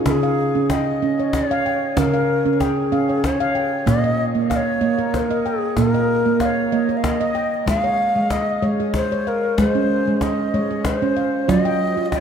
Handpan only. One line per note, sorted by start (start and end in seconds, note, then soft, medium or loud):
0.00 0.14 D#4 medium
0.06 1.07 C#3 medium
0.06 0.38 C#4 medium
0.23 0.70 F5 medium
0.55 0.87 C#4 medium
0.70 1.19 G5 medium
1.02 1.34 C#4 medium
1.20 1.66 C#5 medium
1.51 1.82 F5 medium
1.66 2.14 G5 medium
1.97 2.98 C#3 medium
1.97 2.28 C#4 medium
2.14 2.60 F5 medium
2.46 2.77 C#4 medium
2.61 3.09 G5 medium
2.92 3.24 C#4 medium
2.92 3.39 F5 medium
3.09 3.56 C#5 medium
3.40 3.72 F5 medium
3.55 4.04 G5 medium
3.86 4.88 A#2 medium
3.86 4.18 A#3 medium
4.04 4.50 D#5 medium
4.35 4.67 A#3 medium
4.50 4.99 F5 medium
4.81 5.13 A#3 medium
4.81 5.29 D#5 medium
4.99 5.45 A#4 medium
5.31 5.62 D#5 medium
5.46 5.94 G5 medium
5.77 6.78 A#2 medium
5.77 6.09 A#3 medium
5.94 6.41 D#5 medium
6.26 6.57 A#3 medium
6.41 6.89 F5 medium
6.72 7.04 A#3 medium
6.72 7.19 D#5 medium
6.89 7.36 A#4 medium
7.21 7.53 D#5 medium
7.35 7.84 G5 medium
7.66 7.99 G#3 medium
7.84 8.31 C#5 medium
8.16 8.48 G#3 medium
8.31 8.80 D#5 medium
8.62 8.94 G#3 medium
8.62 9.11 C#5 medium
8.80 9.26 G#4 medium
9.12 9.44 C#5 medium
9.27 9.75 F5 medium
9.58 10.06 G#3 loud
9.75 10.22 C#4 medium
10.07 10.39 G#3 medium
10.22 10.71 D#5 medium
10.54 10.86 G#3 medium
10.54 11.03 C#5 medium
10.71 11.17 G#4 medium
11.02 11.34 C#4 medium
11.17 11.66 F5 medium
11.48 12.20 F#3 loud
11.48 11.80 F4 medium
11.65 12.11 G5 medium
11.97 12.20 F4 medium
12.12 12.20 G5 medium